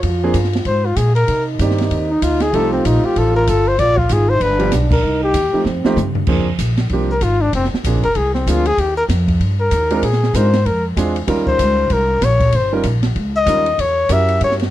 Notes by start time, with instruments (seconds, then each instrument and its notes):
0.01 upright bass F2, trombone F4, kick, ride
0.23 grand piano F3 A#3 C4 D4 G#4
0.34 upright bass G2, kick, hi-hat pedal, ride
0.44 snare
0.53 snare, ride
0.65 upright bass G#2, muted trumpet C5, kick, ride
0.86 muted trumpet F4
0.96 upright bass A#2, muted trumpet G#4, kick, hi-hat pedal, ride
1.15 muted trumpet A#4, ride
1.27 upright bass C3, trombone D#4, kick, ride
1.59 upright bass G2, grand piano D#3 A#3 C4 G4 D5, kick, hi-hat pedal, ride
1.71 snare
1.78 snare, ride
1.90 upright bass D#2, kick, ride
2.11 muted trumpet D#4
2.22 upright bass D2, muted trumpet F4, kick, hi-hat pedal, ride
2.40 muted trumpet G#4, snare, ride
2.53 upright bass C2, grand piano F3 A3 C4 D#4 G4, trombone F4, muted trumpet A4, kick, ride
2.73 muted trumpet C4
2.85 upright bass A#1, muted trumpet D#4, kick, hi-hat pedal, ride
3.04 muted trumpet G4, muted upright bass stroke
3.16 upright bass A1, muted trumpet A4, kick, ride
3.36 muted trumpet A#4
3.47 upright bass G1, muted trumpet A4, kick, hi-hat pedal, ride
3.68 muted trumpet C5
3.79 upright bass A#1, trombone F4, muted trumpet D5, kick, ride
3.97 muted trumpet F4, kick
4.09 upright bass G#1, muted trumpet G#4, kick, hi-hat pedal, ride
4.29 muted trumpet C5
4.40 upright bass G1, trombone D4, muted trumpet B4, kick, ride
4.59 grand piano F3 G3 B3 D4 G4, ride
4.72 upright bass B1, kick, snare, hi-hat pedal, ride
4.91 muted trumpet A#4, kick, crash
5.03 upright bass C2, trombone D#4
5.23 muted trumpet G4
5.33 upright bass D#2, kick, hi-hat pedal, ride
5.53 grand piano F3 A3 C4 D#4 G4, muted upright bass stroke
5.65 upright bass F2, trombone C4, snare
5.84 grand piano F3 A3 C4 D#4 G4, muted upright bass stroke, snare
5.96 upright bass G2, hi-hat pedal, mid tom
6.15 floor tom
6.27 upright bass F2, grand piano F3 A#3 C4 D4 G#4, kick, crash
6.59 upright bass A#1, kick, hi-hat pedal, ride
6.77 snare, ride
6.89 upright bass C2, grand piano F3 A#3 C4 D4 G4, kick, ride
7.11 muted trumpet A#4
7.21 upright bass G#1, muted trumpet F4, kick, hi-hat pedal, ride
7.41 muted trumpet D4
7.53 upright bass F1, muted trumpet C4, kick, ride
7.65 snare
7.73 muted upright bass stroke, snare
7.84 upright bass A#1, grand piano F3 A#3 C4 D4 G#4, kick, hi-hat pedal, ride
7.95 upright bass G#1
8.03 upright bass F1, muted trumpet A#4, ride
8.15 upright bass C2, muted trumpet G#4, kick, ride
8.35 muted trumpet C4, snare
8.47 upright bass D2, grand piano F3 A#3 C4 D4 G#4, muted trumpet F4, kick, hi-hat pedal, ride
8.66 muted trumpet G#4, ride
8.78 upright bass D#2, muted trumpet G4, kick, ride
8.97 muted trumpet A#4
9.09 upright bass F2, kick, snare, hi-hat pedal, ride
9.28 kick, ride
9.40 upright bass G2, kick, ride
9.60 muted trumpet A#4
9.71 upright bass D#2, kick, hi-hat pedal, ride
9.90 grand piano G#3 C4 D4 F4 A#4, ride
10.02 upright bass A#2, muted trumpet G#4, kick, ride
10.13 snare
10.23 snare
10.34 upright bass G#2, grand piano G#3 C4 D4 F4 A#4, muted trumpet C5, kick, hi-hat pedal, ride
10.53 snare, ride
10.66 upright bass F2, muted trumpet A#4, kick, ride
10.96 upright bass E2, grand piano G#3 C4 D4 F4 G#4, kick, hi-hat pedal, ride
11.16 ride
11.27 upright bass D#2, grand piano G3 C#4 D#4 F4 A#4, kick, ride
11.47 muted trumpet C5, kick
11.59 upright bass C#2, kick, hi-hat pedal, ride
11.90 upright bass C2, muted trumpet A#4, kick, ride
12.21 upright bass A#1, muted trumpet C#5, kick, snare, hi-hat pedal, ride
12.40 kick, ride
12.52 upright bass G1, muted trumpet C5, kick, ride
12.72 grand piano G3 C#4 D#4 F4 A#4
12.83 upright bass A#1, kick, hi-hat pedal, ride
13.03 snare, ride
13.15 upright bass C#2, kick, ride
13.37 muted trumpet D#5
13.46 upright bass D#2, grand piano G3 C#4 D#4 F4 A#4, kick, hi-hat pedal, ride
13.66 ride
13.78 upright bass E2, muted trumpet C#5, kick, ride
14.09 upright bass F#2, grand piano C#4 E4 F#4 G4 A#4, muted trumpet E5, kick, hi-hat pedal, ride
14.29 ride
14.40 upright bass G2, muted trumpet C#5, kick, ride
14.51 snare
14.59 snare, ride